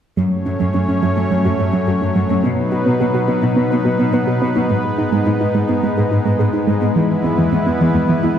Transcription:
0.17 F#2 F#3 A3 C#4 C#5
0.46 F#2 C#4
0.60 F#2 F#3
0.74 F#2 C#4
0.88 F#2 C#4
1.02 F#2 F#3
1.17 F#2 A3
1.31 F#2 F#3
1.45 F#2 F#4
1.59 F#2 C#4
1.73 F#2 F#3
1.88 F#2 F#4
2.02 F#2 C#4
2.16 F#2 F#3
2.30 F#2 A3
2.44 B2 B3 D#4 B4
2.72 B2 F#4
2.86 B2 B3
3.00 B2 F#4
3.14 B2 F#4
3.28 B2 B3
3.43 B2 D#4
3.56 B2 B3
3.71 B2 B4
3.85 B2 F#4
3.99 B2 B3
4.13 B2 B4
4.27 B2 F#4
4.42 B2 B3
4.56 B2 D#4
4.70 G#2 G#3
4.98 G#2 D#4
5.12 G#2 G#3
5.26 G#2 D#4
5.41 G#2 D#4
5.55 G#2 G#3
5.69 G#2 B3
5.83 G#2 G#3
5.97 G#2 G#4
6.11 G#2 D#4
6.25 G#2 G#3
6.39 G#2 G#4
6.53 G#2 D#4
6.67 G#2 G#3
6.82 G#2 B3
6.96 E2 E3 B3 E4 B4
7.24 E2 B3
7.38 E2 E3
7.52 E2 B3
7.67 E2 B3
7.81 E2 E3
7.95 E2 G#3
8.09 E2 E3
8.23 E2 E4

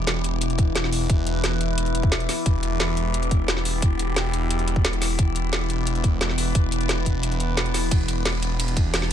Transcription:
Already playing: E1 E3 B3 E4 B4
0.07 snare, closed hi-hat
0.24 closed hi-hat
0.41 closed hi-hat
0.50 closed hi-hat
0.58 kick, closed hi-hat
0.75 snare, closed hi-hat
0.84 snare
0.93 open hi-hat
1.10 E1, kick, closed hi-hat
1.27 closed hi-hat
1.44 snare, closed hi-hat
1.61 closed hi-hat
1.78 closed hi-hat
1.86 closed hi-hat
1.95 E1, closed hi-hat
2.03 kick
2.12 snare, closed hi-hat
2.20 closed hi-hat
2.29 snare, open hi-hat
2.46 E1 G4, kick, closed hi-hat
2.63 closed hi-hat
2.80 snare, closed hi-hat
2.97 closed hi-hat
3.14 closed hi-hat
3.23 closed hi-hat
3.31 kick, closed hi-hat
3.48 snare, closed hi-hat
3.57 snare
3.65 open hi-hat
3.82 E1, kick, closed hi-hat
3.99 closed hi-hat
4.16 snare, closed hi-hat
4.33 closed hi-hat
4.50 closed hi-hat
4.59 closed hi-hat
4.68 closed hi-hat
4.76 kick
4.85 snare, closed hi-hat
4.93 closed hi-hat
5.02 snare, open hi-hat
5.19 E1 B4, kick, closed hi-hat
5.36 closed hi-hat
5.53 snare, closed hi-hat
5.70 closed hi-hat
5.87 closed hi-hat
5.95 closed hi-hat
6.04 kick, closed hi-hat
6.21 snare, closed hi-hat
6.29 snare
6.38 open hi-hat
6.55 E1, kick, closed hi-hat
6.72 closed hi-hat
6.81 closed hi-hat
6.89 snare, closed hi-hat
7.06 E1, kick, closed hi-hat
7.23 closed hi-hat
7.32 closed hi-hat
7.40 closed hi-hat
7.57 snare, closed hi-hat
7.66 closed hi-hat
7.74 snare, open hi-hat
7.91 E1 D4 G4, kick, closed hi-hat, ride
8.08 closed hi-hat, ride
8.25 snare, closed hi-hat, ride
8.43 closed hi-hat, ride
8.60 closed hi-hat, ride
8.68 closed hi-hat
8.77 kick, closed hi-hat, ride
8.94 snare, closed hi-hat, ride
9.02 snare

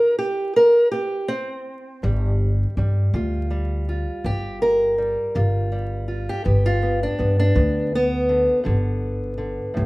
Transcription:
Already playing: C3 E4 A#4
0.18 G4
0.56 A#4
0.91 C4 G4
1.28 C4
2.03 G1 G2 G3
2.77 G2 G3
3.14 D2 D3 F4
3.50 G3
3.89 F4
4.24 G1 G2 G4
4.62 A#4
4.98 G3
5.35 G1 D3 F4
5.72 G3
6.08 F4
6.29 G4
6.44 G1 G2 B3
6.66 F4
6.82 B3
7.03 D4
7.19 G2 B3
7.39 D4
7.55 D2 D3 B3
7.95 B3
8.29 D3
8.64 G1 G2 D3
9.38 D3
9.74 G1 A2

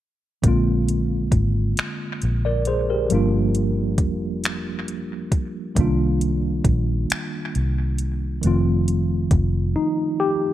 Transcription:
0.42 A#1 D3 G#3 A#3, kick, closed hi-hat
0.47 C4 F4
0.88 closed hi-hat
1.32 G#1, kick, closed hi-hat
1.77 finger snap, muted fingered electric bass stroke, closed hi-hat
2.22 A#1, closed hi-hat
2.45 A#4 D5
2.65 G#4 C5, closed hi-hat
2.90 G4 A#4
3.09 G1 F3 G3 A#3 D4, closed hi-hat
3.15 F4
3.55 closed hi-hat
3.98 F1, kick, closed hi-hat
4.44 finger snap, closed hi-hat
4.88 closed hi-hat
5.32 kick, closed hi-hat
5.75 C2 D#3 G3 A#3, kick, closed hi-hat
5.79 D4 F4
6.21 closed hi-hat
6.64 A#1, kick, closed hi-hat
7.10 finger snap, muted fingered electric bass stroke, closed hi-hat
7.55 C2, closed hi-hat
7.98 closed hi-hat
8.42 F1 D#3 F3 A3, closed hi-hat
8.46 C4 F4
8.88 closed hi-hat
9.31 F1, kick, closed hi-hat
9.76 D#4
10.20 G4

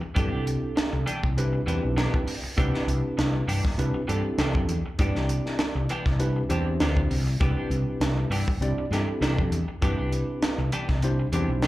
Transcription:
0.01 muted clean electric guitar stroke, muted fretless electric bass stroke
0.15 G2 E3 B3 C4 D4 E4 G4 A4, kick, closed hi-hat
0.32 C2 B3 D4 G4
0.46 muted clean electric guitar stroke, closed hi-hat
0.76 muted clean electric guitar stroke, muted fretless electric bass stroke, snare, closed hi-hat
0.93 C2, muted clean electric guitar stroke
1.06 E3 B3 D4 G4, closed hi-hat
1.23 C2, muted clean electric guitar stroke, kick
1.37 C4 D4 E4 G4 B4, closed hi-hat
1.53 muted clean electric guitar stroke
1.66 E2 E3 B3 C4 D4 E4 G4 B4, closed hi-hat
1.83 B1, muted clean electric guitar stroke
1.96 E3 B3 D4 G4, snare, closed hi-hat
2.14 kick
2.27 muted clean electric guitar stroke, open hi-hat
2.44 muted clean electric guitar stroke, muted fretless electric bass stroke
2.57 C2 E3 B3 C4 D4 E4 G4 B4, kick, closed hi-hat
2.74 B3 D4 G4, snare
2.87 C2, muted clean electric guitar stroke, closed hi-hat
3.17 C2, muted clean electric guitar stroke, snare, closed hi-hat
3.33 muted clean electric guitar stroke
3.48 G2 E3 B3 D4 G4, open hi-hat
3.64 muted clean electric guitar stroke, kick, snare
3.78 C2 C4 D4 E4 G4 B4, closed hi-hat
3.94 muted clean electric guitar stroke, muted fretless electric bass stroke
4.07 G2 E3 B3 C4 D4 E4 G4 A4, closed hi-hat
4.25 muted clean electric guitar stroke
4.38 C2 E3 B3 D4 G4, snare, closed hi-hat
4.55 G2, kick
4.68 E2, muted clean electric guitar stroke, closed hi-hat
4.85 muted fretless electric bass stroke, muted clean electric guitar stroke
4.98 G2 E3 B3 C4 D4 E4 G4 D5, kick, closed hi-hat
5.15 C2 B3 D4 G4, snare
5.29 muted clean electric guitar stroke, closed hi-hat
5.46 snare
5.59 muted fretless electric bass stroke, muted clean electric guitar stroke, snare, closed hi-hat
5.75 C2, muted clean electric guitar stroke
5.89 E3 B3 D4 G4, closed hi-hat
6.06 C2, muted clean electric guitar stroke, kick, snare
6.19 C4 D4 E4 G4 B4, closed hi-hat
6.36 muted clean electric guitar stroke
6.49 E2 E3 B3 C4 D4 E4 G4 C5, closed hi-hat
6.67 muted clean electric guitar stroke
6.80 D2 E3 B3 D4 G4, snare, closed hi-hat
6.97 kick
7.11 C2, muted clean electric guitar stroke, open hi-hat
7.27 muted clean electric guitar stroke
7.40 C2 E3 B3 C4 D4 E4 G4 B4, kick, closed hi-hat
7.57 B3 D4 G4
7.70 C2, muted clean electric guitar stroke, closed hi-hat
8.00 C2, muted clean electric guitar stroke, snare, closed hi-hat
8.18 muted clean electric guitar stroke
8.30 G2 E3 B3 D4 G4, open hi-hat
8.48 muted clean electric guitar stroke, kick
8.60 C2 C4 D4 E4 G4 D5, closed hi-hat
8.78 muted clean electric guitar stroke
8.91 G2 E3 B3 C4 D4 E4 G4 A4, snare, closed hi-hat
9.09 muted clean electric guitar stroke
9.21 C2 E3 B3 D4 G4, snare, closed hi-hat
9.38 G2, kick
9.51 E2, muted clean electric guitar stroke, closed hi-hat
9.68 muted fretless electric bass stroke, muted clean electric guitar stroke
9.82 G2 E3 B3 C4 D4 E4 G4 B4, kick, closed hi-hat
9.98 C2 B3 D4 G4
10.12 muted clean electric guitar stroke, closed hi-hat
10.42 muted fretless electric bass stroke, muted clean electric guitar stroke, snare, closed hi-hat
10.58 C2, muted clean electric guitar stroke
10.72 E3 B3 D4 G4, closed hi-hat
10.89 C2, kick, snare
11.02 C4 D4 E4 G4 C5, closed hi-hat
11.19 muted clean electric guitar stroke
11.32 E2 E3 B3 C4 D4 E4 G4 C5, closed hi-hat
11.48 B1, muted clean electric guitar stroke
11.62 E3 B3 D4 G4, snare, closed hi-hat

